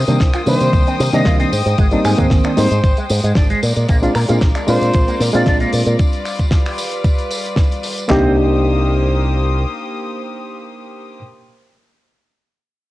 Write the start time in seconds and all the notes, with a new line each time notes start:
Already playing: A#3 C5 G5 D#6
0.07 C3 D#3 G3 A#3 C4 D4, closed hi-hat, tambourine
0.20 C2, kick, snare, closed hi-hat, tambourine
0.34 F4, finger snap, closed hi-hat, tambourine
0.46 C3 D#3 G3 A#3 D4 C5, open hi-hat, tambourine
0.61 C3, closed hi-hat, tambourine
0.73 C2, kick, closed hi-hat, tambourine
0.87 C4, closed hi-hat, tambourine
0.99 C3, snare, open hi-hat, tambourine
1.13 C3 D#3 G3 A#3 C4 D4 D#5, closed hi-hat, tambourine
1.25 C2 F4, kick, snare, closed hi-hat, tambourine
1.40 C4, closed hi-hat, tambourine
1.52 G#2 G#3, open hi-hat, tambourine
1.66 G#2, closed hi-hat, tambourine
1.78 G#1 G#3, kick, closed hi-hat, tambourine
1.91 G3 A#3 C4 D4 D#4, closed hi-hat, tambourine
2.05 G#2 G#4, finger snap, open hi-hat, tambourine
2.18 G#2 D#3 G#3 A#3 C4, kick, closed hi-hat, tambourine
2.30 G#1, kick, snare, closed hi-hat, tambourine
2.44 D4, finger snap, closed hi-hat, tambourine
2.57 G#2 G3 A#3 C4 D#4 C5, open hi-hat, tambourine
2.71 G#2, closed hi-hat, tambourine
2.84 G#1, kick, closed hi-hat, tambourine
2.97 G#3, closed hi-hat, tambourine
3.10 G#2, open hi-hat, tambourine
3.23 G#2 G#3, closed hi-hat, tambourine
3.35 G#1 D4, kick, snare, closed hi-hat, tambourine
3.50 G#3, closed hi-hat, tambourine
3.62 A#2 F4 A#4 D5, open hi-hat, tambourine
3.76 A#2, closed hi-hat, tambourine
3.88 A#1 A#3, kick, closed hi-hat, tambourine
4.02 G#3 C4 D4 F4, closed hi-hat, tambourine
4.15 A#2 A#4, finger snap, open hi-hat, tambourine
4.28 A#2 G#3 A#3 C4 D4 F4, closed hi-hat, tambourine
4.41 A#1, kick, snare, closed hi-hat
4.55 D4, finger snap, closed hi-hat, tambourine
4.67 A#2 G#3 C4 D4 F4 C5, open hi-hat, tambourine
4.81 A#2, closed hi-hat, tambourine
4.93 A#1, kick, closed hi-hat, tambourine
5.08 A#3, closed hi-hat, tambourine
5.20 A#2, snare, open hi-hat, tambourine
5.33 A#2 G#3 A#3 C4 D4 F4 D5, closed hi-hat, tambourine
5.46 A#1 D4 D5, kick, snare, closed hi-hat, tambourine
5.60 A#3, closed hi-hat, tambourine
5.73 A#2, open hi-hat, tambourine
5.86 A#2, closed hi-hat, tambourine
5.99 G3 B4, kick, closed hi-hat, tambourine
6.13 closed hi-hat, tambourine
6.25 finger snap, open hi-hat, tambourine
6.39 kick, closed hi-hat, tambourine
6.51 kick, snare, closed hi-hat, tambourine
6.66 finger snap, open hi-hat, tambourine
6.78 open hi-hat, tambourine
6.92 closed hi-hat, tambourine
7.04 kick, closed hi-hat, tambourine
7.19 closed hi-hat, tambourine
7.31 open hi-hat, tambourine
7.45 closed hi-hat, tambourine
7.56 kick, snare, closed hi-hat, tambourine
7.71 closed hi-hat, tambourine
7.83 open hi-hat, tambourine
7.98 closed hi-hat, tambourine
8.08 C2 A#3 C4 D4 D#4 G4 C5 D#6, snare, clap, floor tom